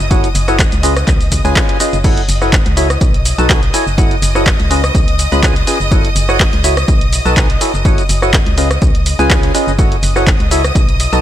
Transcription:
Already playing: D#5 D#6
0.00 F#1
0.11 E4 F#4 A4 C#5 F#5, kick, closed hi-hat, shaker
0.24 closed hi-hat, shaker
0.35 F#1, open hi-hat, shaker
0.48 E4 F#4 A4 C#5 F#5, cross-stick, closed hi-hat, shaker
0.59 kick, clap, closed hi-hat, shaker
0.72 C#2, closed hi-hat, shaker
0.83 C#4 F4 G#4 B4 D#5, open hi-hat, shaker
0.96 cross-stick, closed hi-hat, shaker
1.07 C#2, kick, clap, closed hi-hat, shaker
1.21 open hi-hat, shaker
1.32 kick, open hi-hat, shaker
1.45 C#2 C#4 F4 G#4 B4 G#5, closed hi-hat, shaker
1.56 kick, clap, closed hi-hat, shaker
1.69 closed hi-hat
1.80 C#4 F4 G#4 B4 D#5, open hi-hat, shaker
1.93 F#1, closed hi-hat, shaker
2.04 E4 F#4 A4 C#5 D#5 F#5 D#6, kick, closed hi-hat, crash, shaker
2.17 closed hi-hat
2.29 F#1, open hi-hat, shaker
2.42 E4 F#4 A4 C#5 F#5, cross-stick, shaker
2.53 kick, clap, closed hi-hat, shaker
2.66 C#2, closed hi-hat
2.77 E4 F#4 A4 C#5 E5, open hi-hat, shaker
2.90 cross-stick, closed hi-hat, shaker
3.01 B1, kick, closed hi-hat, shaker
3.14 closed hi-hat
3.25 open hi-hat, shaker
3.38 B1 D#4 F#4 A4 B4 A5, closed hi-hat, shaker
3.49 D#4 F#4 B4 G#5, kick, clap, closed hi-hat, shaker
3.63 closed hi-hat
3.74 E4 F#4 A4 C#5 G#5, open hi-hat, shaker
3.87 F#1, shaker
3.98 E4 F#4 A4 C#5 F#5, kick, closed hi-hat, shaker
4.11 closed hi-hat
4.22 F#1, open hi-hat, shaker
4.35 E4 F#4 A4 C#5 F#5, cross-stick, shaker
4.46 kick, clap, closed hi-hat, shaker
4.59 C#2, closed hi-hat
4.71 C#4 F4 G#4 B4 D#5, open hi-hat, shaker
4.84 cross-stick, closed hi-hat, shaker
4.95 C#2, kick, closed hi-hat, shaker
5.08 closed hi-hat
5.19 open hi-hat, shaker
5.32 C#2 C#4 F4 G#4 B4 B5, closed hi-hat, shaker
5.43 C#4 F4 G#4 B4 G#5, kick, clap, closed hi-hat, shaker
5.56 closed hi-hat
5.67 C#4 F4 G#4 B4 G#5, open hi-hat, shaker
5.80 F#1, shaker
5.91 E4 F#4 A4 C#5 F#5, kick, closed hi-hat, shaker
6.05 closed hi-hat
6.16 F#1, open hi-hat, shaker
6.29 E4 F#4 A4 C#5 F#5, cross-stick, shaker
6.40 kick, clap, closed hi-hat, shaker
6.53 C#2, closed hi-hat
6.64 E4 F#4 A4 C#5 E5, open hi-hat, shaker
6.77 cross-stick, closed hi-hat, shaker
6.88 B1, kick, closed hi-hat, shaker
7.01 closed hi-hat
7.13 open hi-hat, shaker
7.25 B1 D#4 F#4 A4 B4 A5, closed hi-hat, shaker
7.37 D#4 F#4 B4 G#5, kick, clap, closed hi-hat, shaker
7.50 closed hi-hat
7.61 E4 F#4 A4 C#5 G#5, open hi-hat, shaker
7.74 F#1, shaker
7.85 E4 F#4 A4 C#5 F#5, kick, closed hi-hat, shaker
7.98 closed hi-hat, shaker
8.09 F#1, open hi-hat, shaker
8.22 E4 F#4 A4 C#5 F#5, cross-stick, shaker
8.33 kick, clap, closed hi-hat, shaker
8.46 C#2, closed hi-hat
8.58 C#4 F4 G#4 B4 D#5, open hi-hat, shaker
8.71 cross-stick, closed hi-hat, shaker
8.82 C#2, kick, closed hi-hat, shaker
8.95 closed hi-hat
9.06 open hi-hat, shaker
9.19 C#2 C#4 F4 G#4 B4 G#5, closed hi-hat, shaker
9.30 kick, clap, closed hi-hat, shaker
9.43 closed hi-hat
9.54 C#4 F4 G#4 B4 D#5, open hi-hat, shaker
9.67 F#1, shaker
9.79 E4 F#4 A4 C#5 D#5 F#5 D#6, kick, closed hi-hat, shaker
9.92 closed hi-hat
10.03 F#1, open hi-hat, shaker
10.16 E4 F#4 A4 C#5 F#5, cross-stick, shaker
10.27 kick, clap, closed hi-hat, shaker
10.40 C#2, closed hi-hat
10.51 E4 F#4 A4 C#5 E5, open hi-hat, shaker
10.64 cross-stick, closed hi-hat, shaker
10.75 B1, kick, closed hi-hat, shaker
10.89 closed hi-hat
11.00 open hi-hat, shaker
11.12 B1 D#4 F#4 A4 B4 A5, closed hi-hat, shaker

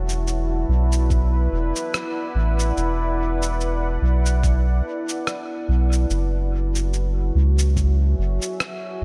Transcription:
Already playing: E1 E4 F#4 B4 D5 E5 A5
0.09 cabasa
0.27 cabasa
0.68 B1
0.80 F#5
0.92 cabasa
1.10 kick, cabasa
1.52 E1
1.76 cabasa
1.94 cross-stick, cabasa
2.35 A1
2.59 cabasa
2.77 E1, cabasa
3.43 cabasa
3.61 cabasa
4.02 B1
4.26 cabasa
4.44 kick, cabasa
5.09 cabasa
5.27 cross-stick, cabasa
5.68 B1
5.93 cabasa
6.09 F#1 F#4, cabasa
6.64 C#5
6.75 cabasa
6.94 cabasa
7.05 E5
7.33 C#2 G#5
7.59 cabasa
7.77 kick, cabasa
8.18 F#1
8.42 cabasa
8.60 cross-stick, cabasa

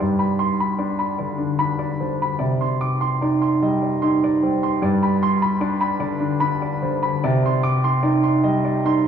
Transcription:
0.00 G2 D5
0.19 B5
0.39 C6
0.60 B5
0.79 D4 D5
0.99 B5
1.19 D3 D5
1.38 D4
1.59 D4 B5
1.79 D5
2.00 D3 C5
2.22 B5
2.39 C3 D5
2.61 C6
2.81 D6
3.01 C6
3.21 D#4 D5
3.42 C6
3.62 G3 D#5
3.82 D5
4.02 D#4 C6
4.24 D5
4.42 G3 C5
4.63 C6
4.82 G2 D5
5.03 B5
5.23 C6
5.42 B5
5.60 D4 D5
5.81 B5
5.99 D3 D5
6.20 D4
6.40 D4 B5
6.62 D5
6.82 D3 C5
7.03 B5
7.24 C3 D5
7.46 C6
7.63 D6
7.84 C6
8.03 D#4 D5
8.24 C6
8.44 G3 D#5
8.65 D5
8.85 D#4 C6

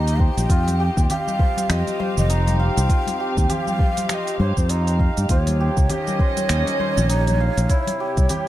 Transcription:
Already playing: D#2 D#3 C#4 D#4 F4 G4 C5 D#5
0.07 open hi-hat, cabasa
0.20 C5 G5, kick
0.37 A#1, open hi-hat, muted conga, cabasa
0.49 F2 F3 F4, kick, open hi-hat, cabasa
0.68 open hi-hat, muted conga, high conga, cabasa
0.80 G4
0.91 C4
0.97 D#2, kick, cabasa
1.10 G4 F5, open hi-hat, low conga, cabasa
1.27 high conga, cabasa
1.39 C5, kick
1.57 open hi-hat, high conga, cabasa
1.70 F2 D#5, finger snap, open hi-hat, cabasa
1.87 open hi-hat, muted conga, cabasa
2.00 C5 F5, high conga
2.17 F1 D#5, low conga, cabasa
2.30 D#4, open hi-hat, cabasa
2.47 open hi-hat, high conga, cabasa
2.60 F5 G5
2.77 C2, open hi-hat, cabasa
2.89 F4, kick, open hi-hat, cabasa
3.07 open hi-hat, muted conga, high conga, cabasa
3.20 G4
3.37 D#2, kick, cabasa
3.44 G5
3.49 G4 F5, open hi-hat, low conga, cabasa
3.67 high conga, cabasa
3.79 C5, kick
3.97 open hi-hat, high conga, cabasa
4.09 D#5 F5, finger snap, open hi-hat, muted conga, cabasa
4.14 D#5
4.27 open hi-hat, cabasa
4.39 G2 C5 C#5, muted conga
4.57 F2 C5, kick, cabasa
4.69 D#4 D#5, open hi-hat, cabasa
4.87 open hi-hat, cabasa
4.99 F5, kick
5.17 G2, open hi-hat, cabasa
5.29 D#2 D#3 F4 C#5, kick, open hi-hat, cabasa
5.47 open hi-hat, muted conga, high conga, cabasa
5.60 G4
5.77 C#2, kick, cabasa
5.89 C#4 G4 D#5, open hi-hat, low conga, cabasa
6.07 high conga, cabasa
6.19 C5, kick
6.37 open hi-hat, high conga, cabasa
6.49 D#2 D#5, finger snap, open hi-hat, cabasa
6.67 open hi-hat, muted conga, cabasa
6.80 C5, high conga
6.97 A#1, low conga, cabasa
7.10 D#4, open hi-hat, cabasa
7.27 open hi-hat, high conga, cabasa
7.40 F5
7.57 A#1, open hi-hat, cabasa
7.69 C3 E4, kick, open hi-hat, cabasa
7.85 G3, open hi-hat, muted conga, high conga, cabasa
8.00 G4
8.17 C2, kick, open hi-hat, cabasa
8.29 G4, open hi-hat, low conga, cabasa

